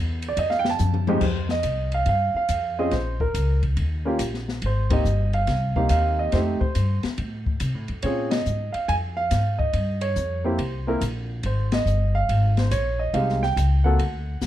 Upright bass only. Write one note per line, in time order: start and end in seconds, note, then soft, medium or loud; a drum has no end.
0.00 0.36 E2 loud
0.37 0.78 F2 medium
0.80 1.21 F#2 medium
1.21 1.63 F2 medium
1.64 2.06 C2 medium
2.06 2.33 G2 medium
2.34 muted upright bass stroke soft
2.49 2.91 F2 medium
2.92 3.33 A#1 medium
3.34 3.76 C#2 medium
3.77 4.19 D#2 medium
4.19 4.61 A#1 medium
4.62 5.04 G#1 medium
5.05 5.46 G1 medium
5.47 5.89 C2 medium
5.90 6.31 D#2 medium
6.33 6.59 F2 medium
6.61 muted upright bass stroke soft
6.75 7.02 G2 medium
7.04 muted upright bass stroke soft
7.18 7.59 A2 medium
7.60 7.75 C3 medium
7.75 7.88 A2 soft
7.89 8.02 F2 medium
8.03 8.45 A#2 medium
8.46 8.72 G#2 medium
8.74 muted upright bass stroke soft
8.89 9.30 F2 medium
9.31 9.73 G#2 medium
9.74 10.15 G2 medium
10.16 10.58 F2 medium
10.59 11.00 C2 medium
11.01 11.43 A#1 medium
11.44 11.85 G#1 medium
11.86 12.27 G1 medium
12.29 12.70 G#1 medium
12.71 13.13 A#1 medium
13.13 13.55 C2 medium
13.56 13.98 C#2 medium
13.99 14.40 D2 medium
14.42 14.47 F#2 medium